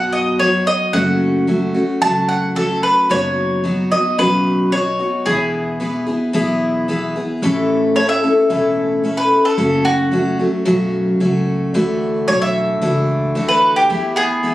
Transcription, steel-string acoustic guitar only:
0.00 0.40 B2 medium
0.00 0.39 F#3 medium
0.00 0.40 B3 medium
0.00 0.40 D#4 medium
0.00 0.41 F#4 medium
0.40 0.93 F#3 medium
0.40 0.94 B3 medium
0.40 0.94 D#4 medium
0.40 0.94 F#4 medium
0.93 1.48 F#2 medium
0.93 1.48 C#3 medium
0.93 1.47 F#3 medium
0.93 1.47 A3 medium
0.93 1.48 C#4 medium
0.93 1.49 F#4 medium
1.47 1.75 F#3 medium
1.47 1.74 A3 medium
1.47 1.73 C#4 medium
1.47 1.73 F#4 medium
1.74 2.01 F#3 soft
1.74 2.01 A3 soft
1.74 2.02 C#4 soft
1.74 2.02 F#4 soft
2.02 2.56 F#2 medium
2.02 2.56 C#3 medium
2.02 2.54 F#3 medium
2.02 2.55 A3 medium
2.02 2.56 C#4 medium
2.02 2.56 F#4 medium
2.55 3.09 F#3 medium
2.55 3.10 A3 medium
2.55 3.10 C#4 medium
2.55 3.09 F#4 medium
3.09 3.64 F#2 medium
3.09 3.64 C#3 medium
3.09 3.62 F#3 medium
3.09 3.64 B3 medium
3.09 3.64 D#4 medium
3.09 3.64 F#4 medium
3.64 3.91 F#3 medium
3.64 3.91 B3 medium
3.64 3.91 D#4 medium
3.64 3.90 F#4 medium
3.91 4.18 F#3 soft
3.91 4.18 B3 soft
3.91 4.18 D#4 soft
3.91 4.18 F#4 soft
4.18 4.72 F#2 medium
4.18 4.72 C#3 medium
4.18 4.71 F#3 medium
4.18 4.72 B3 medium
4.18 4.72 D#4 medium
4.18 4.73 F#4 medium
4.72 4.99 F#3 medium
4.72 4.99 B3 medium
4.72 4.99 D#4 medium
4.72 4.98 F#4 medium
4.99 5.25 F#3 soft
4.99 5.25 B3 soft
4.99 5.26 D#4 soft
4.99 5.26 F#4 soft
5.26 5.79 E3 medium
5.26 5.79 B3 medium
5.26 5.80 E4 medium
5.26 5.81 G#4 medium
5.80 6.07 E3 medium
5.80 6.07 B3 medium
5.80 6.06 E4 medium
5.80 6.05 G#4 medium
6.07 6.33 B3 soft
6.07 6.33 E4 soft
6.07 6.34 G#4 soft
6.33 6.87 E3 medium
6.33 6.88 B3 medium
6.33 6.88 E4 medium
6.33 6.88 G#4 medium
6.88 7.15 E3 medium
6.88 7.15 B3 medium
6.88 7.16 E4 medium
6.88 7.15 G#4 medium
7.16 7.43 B3 soft
7.16 7.42 E4 soft
7.16 7.42 G#4 soft
7.43 7.96 A2 medium
7.43 7.96 E3 medium
7.43 7.95 A3 medium
7.43 7.96 C#4 medium
7.43 7.96 E4 medium
7.43 7.97 A4 loud
7.95 8.23 A3 medium
7.95 8.23 C#4 medium
7.95 8.22 E4 medium
7.95 8.22 A4 medium
8.23 8.49 A3 soft
8.23 8.49 C#4 soft
8.23 8.50 E4 soft
8.23 8.49 A4 soft
8.50 9.04 A2 medium
8.50 9.04 E3 medium
8.50 9.03 A3 medium
8.50 9.03 C#4 medium
8.50 9.04 E4 medium
8.50 9.05 A4 medium
9.04 9.58 A3 medium
9.04 9.58 C#4 medium
9.04 9.58 E4 medium
9.04 9.58 A4 medium
9.58 10.12 F#2 medium
9.58 10.12 C#3 medium
9.58 10.11 F#3 medium
9.58 10.12 A3 medium
9.58 10.12 C#4 medium
9.58 10.13 F#4 medium
10.12 10.39 F#3 medium
10.12 10.39 A3 medium
10.12 10.38 C#4 medium
10.12 10.38 F#4 medium
10.39 10.64 F#3 soft
10.39 10.65 A3 soft
10.39 10.65 C#4 soft
10.39 10.65 F#4 soft
10.65 11.20 F#2 medium
10.65 11.20 C#3 medium
10.65 11.19 F#3 medium
10.65 11.20 A3 medium
10.65 11.20 C#4 medium
10.65 11.20 F#4 medium
11.20 11.74 F#3 medium
11.20 11.74 A3 medium
11.20 11.74 C#4 medium
11.20 11.74 F#4 medium
11.74 12.28 D3 medium
11.74 12.27 E3 medium
11.74 12.27 A3 medium
11.74 12.27 D4 medium
11.74 12.28 F#4 medium
12.28 12.81 E3 medium
12.28 12.81 A3 medium
12.28 12.81 D4 medium
12.28 12.81 F#4 medium
12.82 13.35 E3 medium
12.82 13.35 A3 medium
12.82 13.35 D4 medium
12.82 13.36 F#4 medium
13.35 13.89 E3 medium
13.35 13.90 A3 medium
13.35 13.90 D4 medium
13.35 13.90 F#4 medium
13.90 14.43 E3 medium
13.90 14.43 B3 medium
13.90 14.44 E4 medium
13.90 14.44 G#4 medium
14.43 14.54 E3 medium
14.43 14.54 B3 medium
14.43 14.54 E4 medium
14.43 14.54 G#4 medium

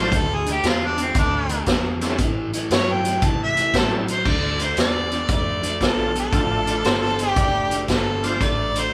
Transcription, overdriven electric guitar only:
0.00 0.10 A2 medium
0.00 0.10 F#3 medium
0.12 0.43 D3 medium
0.12 0.43 A3 loud
0.46 0.62 D3 medium
0.46 0.62 A3 medium
0.64 0.95 D3 medium
0.64 0.95 B3 loud
0.98 1.13 D3 medium
0.98 1.14 B3 medium
1.15 1.46 D3 medium
1.15 1.46 A3 medium
1.50 1.65 D3 medium
1.50 1.65 A3 medium
1.67 1.98 D3 medium
1.67 1.98 B3 loud
2.02 2.17 D3 medium
2.02 2.18 B3 medium
2.19 2.50 A2 medium
2.19 2.50 E3 loud
2.54 2.69 A2 medium
2.54 2.70 E3 medium
2.71 3.02 A2 medium
2.71 3.02 F#3 loud
3.05 3.21 A2 medium
3.05 3.21 F#3 medium
3.22 3.53 A2 medium
3.22 3.53 E3 medium
3.56 3.72 A2 medium
3.56 3.72 E3 loud
3.74 4.05 A2 medium
3.74 4.05 F#3 medium
4.10 4.25 A2 medium
4.10 4.25 F#3 medium
4.26 4.57 D3 medium
4.26 4.57 A3 medium
4.60 4.76 D3 medium
4.60 4.76 A3 medium
4.77 5.08 D3 medium
4.77 5.09 B3 loud
5.12 5.28 D3 medium
5.12 5.28 B3 medium
5.29 5.60 D3 medium
5.29 5.60 A3 medium
5.63 5.79 D3 medium
5.63 5.80 A3 medium
5.80 6.12 D3 medium
5.80 6.12 B3 medium
6.16 6.31 D3 medium
6.16 6.32 B3 medium
6.33 6.64 D3 medium
6.33 6.64 A3 loud
6.66 6.83 D3 medium
6.66 6.83 A3 medium
6.84 7.16 D3 medium
6.84 7.16 B3 loud
7.18 7.35 D3 medium
7.18 7.35 B3 medium
7.36 7.68 D3 medium
7.36 7.68 A3 medium
7.71 7.87 D3 medium
7.71 7.87 A3 medium
7.88 8.20 D3 medium
7.88 8.20 B3 medium
8.22 8.39 D3 medium
8.22 8.39 B3 medium
8.40 8.71 D3 medium
8.40 8.72 A3 medium
8.74 8.90 D3 medium
8.74 8.91 A3 medium

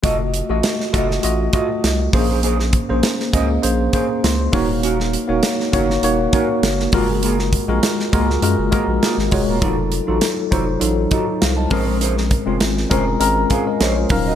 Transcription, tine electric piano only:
0.03 0.39 A3 medium
0.03 0.39 F4 medium
0.03 0.39 F#4 medium
0.03 0.40 D#5 medium
0.49 0.85 A3 medium
0.49 0.85 F4 medium
0.49 0.85 F#4 medium
0.49 0.85 D#5 medium
0.93 1.17 A3 medium
0.93 1.17 F4 medium
0.93 1.18 F#4 medium
0.93 1.18 D#5 medium
1.23 1.47 A3 medium
1.23 1.47 F4 medium
1.23 1.48 F#4 medium
1.23 1.48 D#5 medium
1.53 2.02 A3 medium
1.53 2.02 F4 medium
1.53 2.02 F#4 medium
1.53 2.02 D#5 medium
2.13 2.73 A#3 medium
2.13 2.74 C#4 medium
2.13 2.74 G#4 medium
2.13 2.74 C5 medium
2.89 3.24 A#3 medium
2.89 3.24 C#4 medium
2.89 3.24 G#4 medium
2.89 3.25 C5 medium
3.33 3.57 A#3 medium
3.33 3.57 C#4 medium
3.33 3.58 G#4 medium
3.33 3.58 D#5 medium
3.62 3.87 A#3 medium
3.62 3.87 C#4 medium
3.62 3.87 G#4 medium
3.62 3.87 C5 medium
3.93 4.41 A#3 medium
3.93 4.42 C#4 medium
3.93 4.42 G#4 medium
3.93 4.42 C5 medium
4.24 4.52 C6 medium
4.52 5.13 A#3 medium
4.52 5.13 D#4 medium
4.52 5.13 F#4 medium
4.52 5.13 C#5 medium
4.52 4.81 F5 medium
5.28 5.63 A#3 medium
5.28 5.64 D#4 medium
5.28 5.64 F#4 medium
5.28 5.64 C#5 medium
5.72 5.97 A#3 medium
5.72 5.97 D#4 medium
5.72 5.97 F#4 medium
5.72 5.97 C#5 medium
6.03 6.27 A#3 medium
6.03 6.27 D#4 medium
6.03 6.28 F#4 medium
6.03 6.28 C#5 medium
6.33 6.81 A#3 medium
6.33 6.81 D#4 medium
6.33 6.81 F#4 medium
6.33 6.82 C#5 medium
6.93 7.53 G#3 medium
6.93 7.53 F4 medium
6.93 7.53 F#4 medium
6.93 7.53 A#4 loud
7.68 8.03 G#3 medium
7.68 8.03 F4 medium
7.68 8.04 F#4 medium
7.68 8.04 A#4 medium
8.12 8.36 G#3 medium
8.12 8.37 F4 medium
8.12 8.37 F#4 medium
8.12 8.37 A#4 medium
8.42 8.66 G#3 medium
8.42 8.67 F4 medium
8.42 8.67 F#4 medium
8.42 8.67 A#4 medium
8.71 9.20 G#3 medium
8.71 9.20 F4 medium
8.71 9.20 F#4 medium
8.71 9.21 A#4 medium
9.31 9.56 G#3 medium
9.31 9.56 F4 medium
9.31 9.56 F#4 medium
9.31 9.57 C#5 medium
9.62 9.97 F#3 medium
9.62 9.98 D#4 medium
9.62 9.98 F4 medium
9.62 9.98 A4 medium
10.07 10.42 F#3 medium
10.07 10.42 D#4 medium
10.07 10.43 F4 medium
10.07 10.43 A4 medium
10.51 10.75 F#3 medium
10.51 10.76 D#4 medium
10.51 10.76 F4 medium
10.51 10.76 C5 medium
10.80 11.05 F#3 medium
10.80 11.05 D#4 medium
10.80 11.05 F4 medium
10.80 11.06 A4 medium
11.11 11.40 A4 soft
11.11 11.40 D#5 medium
11.41 11.57 C5 medium
11.41 11.57 F5 medium
11.57 11.86 D#5 medium
11.57 11.85 A5 medium
11.70 12.30 G#3 medium
11.70 12.31 C4 medium
11.70 12.31 C#4 medium
11.70 12.31 A#4 medium
12.46 12.81 G#3 medium
12.46 12.82 C4 medium
12.46 12.82 C#4 medium
12.46 12.82 F4 medium
12.89 13.14 G#3 medium
12.89 13.14 C4 medium
12.89 13.14 C#4 medium
12.89 13.15 A#4 medium
12.89 13.18 A#5 medium
13.20 13.44 G#3 medium
13.20 13.45 C4 medium
13.20 13.45 C#4 medium
13.20 13.45 A#4 medium
13.20 13.48 A#5 medium
13.51 13.66 C5 soft
13.51 13.66 F5 medium
13.67 13.80 A#4 medium
13.67 13.80 D#5 medium
13.81 13.97 G#4 medium
13.81 13.96 C#5 medium
13.81 14.09 D#5 medium
13.97 14.26 F4 soft
13.97 14.25 C5 medium
14.10 14.35 F#3 medium
14.10 14.35 C#4 medium
14.10 14.35 D#4 medium
14.10 14.35 A#4 loud
14.10 14.35 F5 medium

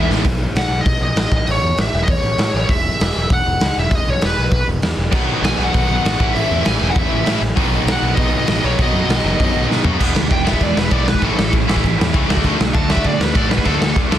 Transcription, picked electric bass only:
0.09 0.23 A1 medium
0.25 0.45 B1 medium
0.55 0.65 B1 medium
0.68 0.79 B1 medium
0.85 0.95 B1 medium
1.01 1.11 B1 medium
1.16 1.26 A1 medium
1.31 1.41 A1 medium
1.47 1.57 A1 medium
1.62 1.72 E2 medium
1.78 1.87 A1 medium
1.93 2.03 E1 medium
2.08 2.18 E2 medium
2.23 2.33 A1 medium
2.38 2.48 A2 medium
2.54 2.64 A1 medium
2.69 2.89 E1 loud
3.01 3.10 E1 medium
3.16 3.25 E1 medium
3.30 3.40 E1 medium
3.46 3.55 E1 medium
3.60 3.70 C#2 medium
3.77 3.87 E1 medium
3.92 4.01 E1 medium
4.08 4.17 B1 medium
4.23 4.32 E1 medium
4.38 4.47 B1 medium
4.52 4.62 B1 medium
4.67 4.77 E1 medium
4.83 4.92 E2 medium
4.97 5.07 E1 medium
5.12 5.32 B1 medium
5.42 5.52 B1 loud
5.58 5.68 B1 medium
5.75 5.84 B1 medium
5.90 5.99 B1 medium
6.05 6.15 A1 medium
6.20 6.30 A1 medium
6.35 6.45 A1 medium
6.51 6.60 E2 loud
6.66 6.76 A1 loud
6.81 6.91 E1 loud
6.96 7.06 E2 medium
7.12 7.22 A1 loud
7.26 7.36 A2 medium
7.41 7.51 A1 medium
7.57 7.77 B1 loud
7.85 7.96 B1 medium
8.02 8.12 B1 medium
8.18 8.27 B1 medium
8.32 8.42 B1 medium
8.48 8.58 A1 medium
8.64 8.74 B1 medium
8.79 8.89 B1 medium
8.92 9.03 F#2 loud
9.09 9.19 B1 medium
9.24 9.34 F#1 loud
9.40 9.49 F#2 medium
9.55 9.65 B1 medium
9.70 9.80 B2 medium
9.86 9.96 F#2 loud
10.00 10.12 E1 medium
10.16 10.27 D2 medium
10.31 10.53 E1 medium
10.61 10.72 E2 medium
10.76 10.88 E1 medium
10.91 11.14 B1 medium
11.22 11.33 A1 medium
11.39 11.49 A1 medium
11.53 11.64 A1 medium
11.69 11.80 A1 medium
11.84 11.95 A1 medium
11.99 12.10 E2 medium
12.15 12.26 C#2 medium
12.30 12.41 D2 medium
12.44 12.55 D2 loud
12.60 12.71 B1 medium
12.75 12.97 D2 loud
13.05 13.16 D3 medium
13.20 13.31 D2 medium
13.35 13.58 A2 medium
13.66 13.77 D2 medium
13.80 13.92 D2 medium
13.96 14.07 D2 medium
14.12 14.18 D2 medium

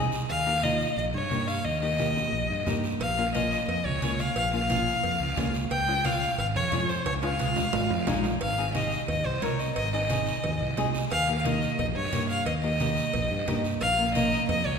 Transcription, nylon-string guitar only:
0.00 0.13 C4 medium
0.00 0.14 D#4 medium
0.00 0.14 G#4 medium
0.46 0.52 A#3 medium
0.46 0.52 D#4 medium
0.46 0.53 G4 medium
0.63 0.87 A#3 medium
0.63 0.87 D#4 medium
0.63 0.87 F4 medium
1.31 1.49 A#3 medium
1.31 1.49 D#4 medium
1.31 1.49 G4 medium
1.82 1.88 A#3 medium
1.82 1.88 D#4 medium
1.82 1.88 G4 medium
1.99 2.23 A#3 medium
1.99 2.23 D#4 medium
1.99 2.23 G4 medium
2.66 2.84 A#3 medium
2.66 2.84 D#4 medium
2.66 2.85 G4 medium
3.17 3.23 A#3 medium
3.17 3.24 C#4 medium
3.17 3.24 F4 medium
3.34 3.58 A#3 medium
3.34 3.58 C#4 medium
3.34 3.58 F4 medium
4.02 4.20 A#3 medium
4.02 4.20 C#4 medium
4.02 4.20 F4 medium
4.53 4.59 A#3 medium
4.53 4.59 C#4 medium
4.53 4.59 F4 medium
4.69 4.93 A#3 medium
4.69 4.93 C#4 medium
4.69 4.94 F4 medium
5.37 5.55 A#3 medium
5.37 5.55 C#4 medium
5.37 5.55 F4 medium
5.87 5.94 G#3 medium
5.87 5.94 C#4 medium
5.87 5.94 F4 medium
6.04 6.28 G#3 medium
6.04 6.28 C#4 medium
6.04 6.29 F4 medium
6.72 6.90 G#3 medium
6.72 6.90 C#4 medium
6.72 6.90 F4 medium
7.23 7.29 G#3 medium
7.23 7.29 C#4 medium
7.23 7.29 F4 medium
7.39 7.63 G#3 medium
7.39 7.63 C#4 medium
7.39 7.64 F4 medium
8.07 8.25 G#3 medium
8.07 8.25 C#4 medium
8.07 8.25 D#4 medium
8.58 8.64 C4 medium
8.58 8.64 D#4 medium
8.58 8.64 G#4 medium
8.74 8.98 C4 medium
8.74 8.98 D#4 medium
8.74 8.99 G4 medium
9.42 9.60 C4 medium
9.42 9.60 D#4 medium
9.42 9.60 A#4 medium
9.93 9.99 C4 medium
9.93 9.99 D#4 medium
9.93 9.99 G#4 medium
10.09 10.33 C4 medium
10.09 10.34 D#4 medium
10.09 10.34 G#4 medium
10.77 10.95 C4 medium
10.77 10.95 D#4 medium
10.77 10.96 G#4 medium
11.28 11.34 A#3 medium
11.28 11.34 D#4 medium
11.28 11.35 G4 medium
11.45 11.69 A#3 medium
11.45 11.69 D#4 medium
11.45 11.69 G4 medium
12.12 12.30 A#3 medium
12.12 12.31 D#4 medium
12.12 12.31 G4 medium
12.63 12.69 A#3 medium
12.63 12.69 D#4 medium
12.63 12.70 G4 medium
12.80 13.04 A#3 medium
12.80 13.04 D#4 medium
12.80 13.04 G4 medium
13.47 13.65 A#3 medium
13.47 13.66 D#4 medium
13.47 13.66 G4 medium
13.98 14.04 A#3 medium
13.98 14.04 C#4 medium
13.98 14.04 F4 medium
14.15 14.39 A#3 medium
14.15 14.39 C#4 medium
14.15 14.39 D#4 medium

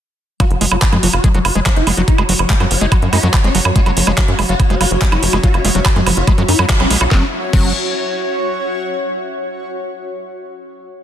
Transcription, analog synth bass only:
0.51 0.57 F#1 medium
0.61 0.67 F#1 loud
0.71 0.78 F#1 medium
0.92 0.99 F#2 medium
1.03 1.09 F#1 loud
1.13 1.20 F#1 medium
1.34 1.41 F#1 medium
1.45 1.51 F#1 loud
1.55 1.62 F#1 medium
1.76 1.83 F#1 medium
1.87 1.93 F#1 loud
1.97 2.04 F#1 medium
2.18 2.25 F#1 medium
2.29 2.35 F#1 loud
2.39 2.46 F#1 medium
2.60 2.67 F#2 medium
2.71 2.77 F#1 loud
2.81 2.88 F#1 medium
3.02 3.09 F#2 medium
3.13 3.19 F#2 loud
3.23 3.30 F#2 medium
3.44 3.51 F#1 medium
3.55 3.61 F#1 loud
3.65 3.71 F#2 medium
3.86 3.92 F#1 medium
3.97 4.03 F#1 loud
4.07 4.13 F#1 medium
4.28 4.34 F#2 medium
4.39 4.45 F#1 loud
4.49 4.55 F#1 medium
4.70 4.76 F#1 medium
4.81 4.87 F#1 loud
4.91 4.97 F#1 medium
5.12 5.18 F#1 medium
5.23 5.29 F#1 loud
5.33 5.39 F#1 medium
5.54 5.60 F#1 medium
5.65 5.71 F#1 loud
5.75 5.81 F#1 medium
5.96 6.02 F#2 medium
6.06 6.13 F#1 loud
6.17 6.23 F#1 medium
6.38 6.44 F#2 medium
6.48 6.55 F#2 loud
6.59 6.65 F#2 medium
6.80 6.86 B1 medium
6.90 6.97 B1 loud
7.01 7.07 B1 medium
7.11 7.23 F#1 loud
7.53 7.73 F#1 medium

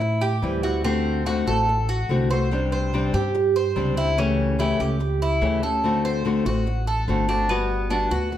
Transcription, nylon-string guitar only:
0.01 muted nylon-string guitar stroke medium
0.42 0.62 E3 medium
0.42 0.63 G3 medium
0.42 0.63 C4 medium
0.42 0.63 E4 medium
0.64 0.84 G3 soft
0.64 0.84 C4 soft
0.64 0.84 E4 soft
0.84 1.25 D3 medium
0.84 1.25 A3 medium
0.84 1.26 C4 medium
0.84 1.26 F#4 medium
1.26 1.46 D3 medium
1.26 1.46 A3 medium
1.26 1.47 C4 medium
1.26 1.46 F#4 medium
1.47 1.68 A3 soft
1.47 1.68 C4 soft
1.47 1.67 F#4 soft
1.69 muted nylon-string guitar stroke medium
2.09 2.29 D3 medium
2.09 2.30 A3 medium
2.09 2.30 C4 medium
2.09 2.30 F#4 medium
2.31 2.51 A3 soft
2.31 2.51 C4 soft
2.31 2.51 F#4 soft
2.51 2.92 C3 medium
2.51 2.92 G3 medium
2.51 2.93 C4 medium
2.51 2.93 D4 medium
2.51 2.93 G4 medium
2.93 3.13 C3 medium
2.93 3.13 G3 medium
2.93 3.13 C4 medium
2.93 3.13 D4 medium
2.93 3.13 G4 medium
3.14 3.34 C4 soft
3.14 3.34 D4 soft
3.14 3.34 G4 soft
3.35 muted nylon-string guitar stroke medium
3.76 3.96 C3 medium
3.76 3.96 G3 medium
3.76 3.96 C4 medium
3.76 3.96 D4 medium
3.76 3.96 G4 medium
3.97 4.18 C4 soft
3.97 4.17 D4 soft
3.97 4.17 G4 soft
4.18 4.57 C#3 medium
4.18 4.58 E3 medium
4.18 4.58 A3 medium
4.18 4.59 C#4 medium
4.18 4.59 G4 medium
4.59 4.79 C#3 medium
4.59 4.79 E3 medium
4.59 4.79 A3 medium
4.59 4.79 C#4 medium
4.59 4.78 G4 medium
4.80 4.99 A3 soft
4.80 4.99 C#4 soft
4.80 5.00 G4 soft
5.00 muted nylon-string guitar stroke medium
5.41 5.62 C#3 medium
5.41 5.62 E3 medium
5.41 5.62 A3 medium
5.41 5.62 C#4 medium
5.41 5.61 G4 medium
5.63 5.83 A3 soft
5.63 5.83 C#4 soft
5.63 5.83 G4 soft
5.84 6.24 D3 medium
5.84 6.24 A3 medium
5.84 6.25 C4 medium
5.84 6.25 F#4 medium
6.25 6.45 D3 medium
6.25 6.45 A3 medium
6.25 6.46 C4 medium
6.25 6.44 F#4 medium
6.46 6.66 A3 soft
6.46 6.66 C4 soft
6.46 6.66 F#4 soft
6.66 muted nylon-string guitar stroke medium
7.08 7.28 D3 medium
7.08 7.28 A3 medium
7.08 7.28 C4 medium
7.08 7.27 F#4 medium
7.28 7.49 A3 soft
7.28 7.49 C4 soft
7.28 7.49 F#4 soft
7.49 7.89 G3 medium
7.49 7.89 B3 medium
7.49 7.90 F#4 medium
7.90 8.11 G3 medium
7.90 8.11 B3 medium
7.90 8.10 F#4 medium
8.11 8.31 B3 soft
8.11 8.31 F#4 soft
8.32 muted nylon-string guitar stroke medium

